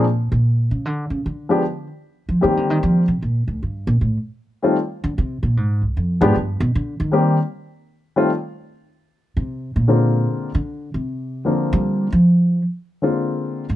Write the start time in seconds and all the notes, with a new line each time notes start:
Already playing: A#2
0.32 A#2
0.71 C#3
0.85 D3
1.10 C#3
1.26 D3
1.49 F3 G#3 B3 D4 G4
2.29 F3
2.41 D#3 G3 A#3 C4 G4
2.57 D3
2.70 D#3
2.83 F3
3.08 C3
3.22 A#2
3.48 D2
3.63 G2
3.87 A#2
4.01 A2
4.62 D#3 G3 A3 C4 F4
5.04 D3
5.18 C3
5.43 A#2
5.57 G#2
5.82 C2
5.97 F2
6.21 G#2 F3 G#3 B3 D4 G4
6.35 G2
6.60 B2
6.75 D3
7.00 D#3
7.12 D#3 G3 A#3 C4 G4
8.16 D#3 G3 A3 C4 F4
9.37 C3
9.76 A#2
9.88 D3 G#3 A#3 C4 F4
10.55 D3
10.94 C3
11.45 D3 F3 A#3 C4 F4
11.73 G3
12.12 F3
13.02 D3 G#3 A#3 C4 F4
13.69 G#2